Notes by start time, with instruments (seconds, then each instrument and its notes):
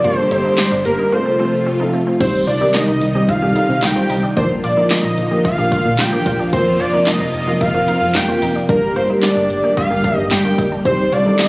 Already playing: string machine A#3, analog synth lead D5
0.04 fm bass G1, string machine D3 G3 G4, tine electric piano A#3 D4 G4 A#4, synth arpeggio sound F4, closed hi-hat
0.17 tine electric piano A#3 D4 G4 A4, analog synth lead C5
0.31 fm bass G1, synth arpeggio sound D#4, analog synth lead C5, closed hi-hat
0.45 synth arpeggio sound D#4
0.58 synth arpeggio sound D4, snare, clap, closed hi-hat
0.72 fm bass G1, synth arpeggio sound D4
0.85 fm bass G1, tine electric piano A#3 D4 G4 A#4, analog synth lead A#4, closed hi-hat
0.99 synth arpeggio sound D#4
1.12 string machine C3 F3 A3 F4, tine electric piano A3 C4 F4 A4, synth arpeggio sound F4, analog synth lead C5
1.26 synth arpeggio sound C4
1.39 tine electric piano A3 C4 F4 A4, synth arpeggio sound C4
1.66 synth arpeggio sound C4
1.80 tine electric piano A3 C4 F4 A4, synth arpeggio sound D#4
1.93 synth arpeggio sound C4
2.07 synth arpeggio sound C4
2.20 fm bass C2, string machine C3 D#3 G3 D#4, tine electric piano G3 C4 D#4 G4 C5, synth arpeggio sound C4, analog synth lead C5, kick, closed hi-hat, crash
2.47 fm bass C2, synth arpeggio sound F4, analog synth lead D5, closed hi-hat
2.61 tine electric piano G3 C4 D#4 G4 A#4, synth arpeggio sound D#4
2.74 synth arpeggio sound D4, analog synth lead D#5, snare, clap, closed hi-hat
2.88 fm bass C2, synth arpeggio sound D#4
3.01 fm bass C2, closed hi-hat
3.15 tine electric piano G3 C4 D#4 G4 C5, synth arpeggio sound G4
3.29 synth arpeggio sound F4, analog synth lead F5, kick, closed hi-hat
3.42 fm bass C2, tine electric piano G3 C4 D#4 G4 A4, synth arpeggio sound G4
3.56 synth arpeggio sound D#4, closed hi-hat
3.69 fm bass C3
3.83 fm bass C2, synth arpeggio sound D#4, analog synth lead G5, snare, clap, closed hi-hat
3.96 tine electric piano G3 C4 D#4 G4 C5, synth arpeggio sound F4
4.10 fm bass C2, synth arpeggio sound D#4, open hi-hat
4.23 synth arpeggio sound D4
4.37 fm bass A#1, string machine D3 F3 A#3 F4, tine electric piano F3 A#3 D4 F4 A#4, synth arpeggio sound D4, analog synth lead C5, kick, closed hi-hat
4.64 fm bass A#1, synth arpeggio sound F4, analog synth lead D5, closed hi-hat
4.77 tine electric piano F3 A#3 D4 F4 A#4, synth arpeggio sound D#4
4.91 synth arpeggio sound D4, analog synth lead D#5, snare, clap, closed hi-hat
5.04 fm bass A#1, synth arpeggio sound D#4
5.18 fm bass A#1, closed hi-hat
5.31 tine electric piano F3 A#3 D4 F4 A#4, synth arpeggio sound G4
5.45 synth arpeggio sound F4, analog synth lead F5, kick, closed hi-hat
5.58 fm bass A#1, tine electric piano F3 A#3 D4 F4 A#4, synth arpeggio sound G4
5.72 synth arpeggio sound F4, kick, closed hi-hat
5.85 fm bass A#2
5.99 fm bass A#1, synth arpeggio sound F4, analog synth lead G5, snare, clap, closed hi-hat
6.12 tine electric piano F3 A#3 D4 F4 A#4, synth arpeggio sound G4
6.26 fm bass A#1, synth arpeggio sound F4, kick, open hi-hat
6.39 synth arpeggio sound D4
6.53 fm bass F1, string machine C3, tine electric piano F3 A#3 C4 F4 A#4, synth arpeggio sound C4, analog synth lead C5, kick, closed hi-hat
6.80 fm bass F1, synth arpeggio sound F4, analog synth lead D5, closed hi-hat
6.93 tine electric piano F3 A#3 C4 F4 A#4, synth arpeggio sound D#4
7.07 synth arpeggio sound D4, analog synth lead D#5, snare, clap, closed hi-hat
7.20 fm bass F1, synth arpeggio sound D#4
7.34 fm bass F1, closed hi-hat
7.47 tine electric piano F3 A#3 C4 F4 A#4, synth arpeggio sound F4
7.61 synth arpeggio sound D#4, analog synth lead F5, kick, closed hi-hat
7.74 fm bass F1, tine electric piano F3 A#3 C4 F4 A#4, synth arpeggio sound F4
7.88 synth arpeggio sound D#4, closed hi-hat
8.01 fm bass F2
8.15 fm bass F1, synth arpeggio sound D#4, analog synth lead G5, snare, clap, closed hi-hat
8.29 tine electric piano F3 A#3 C4 F4 A#4, synth arpeggio sound F4
8.42 fm bass F1, synth arpeggio sound D#4, open hi-hat
8.56 synth arpeggio sound D4
8.69 fm bass G1, string machine D3 G3 G4, tine electric piano G3 A#3 D4 G4 A#4, synth arpeggio sound D4, analog synth lead A#4, kick, closed hi-hat
8.96 fm bass G1, synth arpeggio sound F4, analog synth lead C5, closed hi-hat
9.10 tine electric piano G3 A#3 D4 G4 A#4, synth arpeggio sound D#4
9.23 synth arpeggio sound D4, analog synth lead D5, snare, clap, closed hi-hat
9.37 fm bass G1, synth arpeggio sound D4
9.50 fm bass G1, closed hi-hat
9.64 tine electric piano G3 A#3 D4 G4 A#4, synth arpeggio sound G4
9.77 synth arpeggio sound F4, analog synth lead F5, kick, closed hi-hat
9.91 fm bass G1, tine electric piano G3 A#3 D4 G4 A#4, synth arpeggio sound G4
10.04 synth arpeggio sound D4, kick, closed hi-hat
10.18 fm bass G2
10.31 fm bass G1, synth arpeggio sound D4, analog synth lead G5, snare, clap, closed hi-hat
10.45 tine electric piano G3 A#3 D4 G4 A#4, synth arpeggio sound F4
10.58 fm bass G1, synth arpeggio sound D#4, kick, open hi-hat
10.72 synth arpeggio sound D4
10.85 fm bass C2, string machine D#3 C4 G4, tine electric piano G3 C4 D#4 G4 C5, synth arpeggio sound C4, analog synth lead C5, kick, closed hi-hat
11.12 fm bass C2, synth arpeggio sound F4, analog synth lead D5, closed hi-hat
11.26 tine electric piano G3 C4 D#4 G4 A4, synth arpeggio sound D#4
11.39 synth arpeggio sound D4, analog synth lead D#5, snare, clap, closed hi-hat